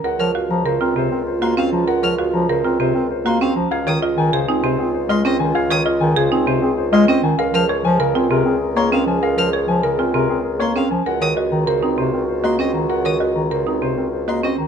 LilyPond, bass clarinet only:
\new Staff \with { instrumentName = "Bass clarinet" } { \clef bass \time 6/4 \key ges \lydian \tempo 4 = 196 r8 f8 r8 f8 des8 c'8 c8 c'8 r8 bes8 c'8 f8 | r8 f8 r8 f8 des8 c'8 c8 c'8 r8 bes8 c'8 f8 | r8 ees8 r8 ees8 des8 c'8 c8 c'8 r8 aes8 c'8 ees8 | r8 ees8 r8 ees8 des8 c'8 c8 c'8 r8 aes8 c'8 ees8 |
r8 f8 r8 f8 des8 c'8 c8 c'8 r8 bes8 c'8 f8 | r8 f8 r8 f8 des8 c'8 c8 c'8 r8 bes8 c'8 f8 | r8 ees8 r8 ees8 des8 c'8 c8 c'8 r8 bes8 c'8 ees8 | r8 ees8 r8 ees8 des8 c'8 c8 c'8 r8 bes8 c'8 ees8 | }